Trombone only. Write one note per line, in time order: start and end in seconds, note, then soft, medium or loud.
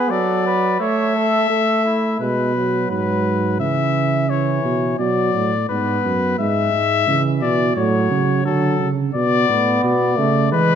0.00 0.12 B3 medium
0.10 0.80 F#3 medium
0.80 1.49 A3 medium
1.50 2.19 A3 medium
2.20 2.53 G#3 medium
2.56 3.62 F#3 medium
3.60 4.29 E3 medium
4.30 4.98 E3 medium
4.99 5.52 F#3 medium
5.69 6.37 B3 medium
6.39 7.06 G#3 medium
7.07 7.75 E3 medium
7.76 8.44 F#3 medium
8.46 8.90 F#3 medium
9.15 10.19 B3 medium
10.18 10.52 A3 medium
10.52 10.75 G#3 medium